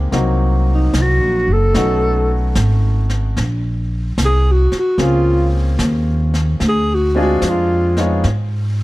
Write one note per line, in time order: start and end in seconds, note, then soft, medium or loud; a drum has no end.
0.00 0.14 G#3 medium
0.00 0.12 A#3 medium
0.00 0.13 C4 medium
0.00 0.13 D#4 medium
0.00 0.14 G4 medium
0.00 0.14 G#4 medium
0.12 0.91 C2 medium
0.12 0.61 F#3 medium
0.12 0.61 A#3 medium
0.12 0.61 C4 medium
0.12 0.62 D#4 medium
0.12 0.62 F#4 medium
0.12 brush sweep soft
0.12 snare soft
0.74 1.03 D#4 medium
0.94 1.20 C2 medium
0.94 snare medium
0.94 hi-hat pedal medium
1.02 1.54 F#4 medium
1.20 1.47 A#1 medium
1.48 1.73 F#1 medium
1.53 2.31 A4 medium
1.74 2.54 B1 medium
1.74 2.23 A3 medium
1.74 2.23 B3 medium
1.74 2.23 C#4 medium
1.74 2.24 D#4 medium
1.74 2.24 F#4 medium
1.74 brush sweep soft
1.74 snare soft
2.55 3.34 G#1 medium
2.55 snare medium
2.55 hi-hat pedal medium
3.10 snare soft
3.37 4.15 A#1 medium
3.37 brush sweep soft
3.37 snare soft
4.18 4.68 C2 medium
4.18 snare medium
4.18 hi-hat pedal medium
4.25 4.53 G#4 medium
4.51 4.75 F#4 medium
4.72 muted upright bass stroke soft
4.72 snare soft
4.79 5.06 F#4 medium
4.98 5.77 C#2 medium
4.98 6.23 A#3 medium
4.98 6.23 C4 medium
4.98 6.23 C#4 medium
4.98 6.24 F4 medium
4.98 6.24 G#4 medium
4.98 brush sweep soft
4.98 snare soft
5.05 5.56 F4 medium
5.79 6.58 D#2 medium
5.79 snare medium
5.79 hi-hat pedal medium
6.34 snare soft
6.60 7.39 D2 medium
6.60 brush sweep soft
6.60 snare soft
6.69 6.96 G#4 medium
6.95 7.18 F#4 medium
7.15 7.40 G#3 medium
7.15 7.39 C4 medium
7.15 7.40 D4 medium
7.15 7.40 F4 medium
7.15 7.41 G#4 medium
7.22 7.51 F#4 medium
7.42 8.21 F2 medium
7.42 snare medium
7.42 hi-hat pedal medium
7.50 8.01 F4 medium
7.97 8.21 G#3 medium
7.97 8.22 B3 medium
7.97 8.22 D#4 medium
7.97 8.22 F4 medium
7.97 8.22 C#5 medium
7.97 snare soft
8.24 8.83 G#2 medium
8.24 brush sweep medium
8.24 snare soft